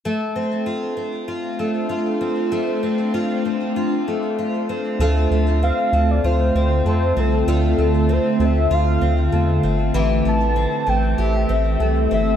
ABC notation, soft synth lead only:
X:1
M:4/4
L:1/16
Q:1/4=97
K:Dm
V:1 name="Soft synth lead"
z16 | z16 | z4 f3 d c2 c2 c2 A2- | A2 A2 c2 e2 f6 z2 |
z2 a4 g2 e6 e2 |]